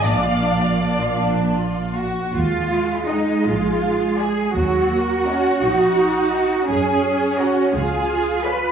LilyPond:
<<
  \new Staff \with { instrumentName = "Violin section" } { \time 6/8 \key ees \minor \tempo 4. = 55 f''4. r4. | f''4 ees''8 f''4 aes''8 | ges''2. | aes''4 ges''8 aes''4 ces'''8 | }
  \new Staff \with { instrumentName = "Violin section" } { \time 6/8 \key ees \minor <d' d''>16 <f' f''>16 <d' d''>16 <f' f''>16 <d' d''>16 <f' f''>16 d'8 f'8 ges'8 | r4 <ees'' ges''>8 r4 <d'' aes''>8 | r4 <ees'' bes''>8 r4 <ees'' bes''>8 | r4 <des'' bes''>8 r4 <des'' f''>8 | }
  \new Staff \with { instrumentName = "Cello section" } { \time 6/8 \key ees \minor bes,2~ bes,8 r8 | f'4 ees'8 f'4 aes'8 | ges'2. | aes'4 ges'8 aes'4 ces''8 | }
  \new Staff \with { instrumentName = "Viola section" } { \time 6/8 \key ees \minor d''2~ d''16 r8. | aes2. | ges8 bes8 des'8 ees'4. | des'4. f'4. | }
  \new Staff \with { instrumentName = "Double bass section" } { \clef bass \time 6/8 \key ees \minor bes,,2~ bes,,8 r8 | ees,4. bes,,4. | ees,4. bes,,4. | ges,4. des,4. | }
>>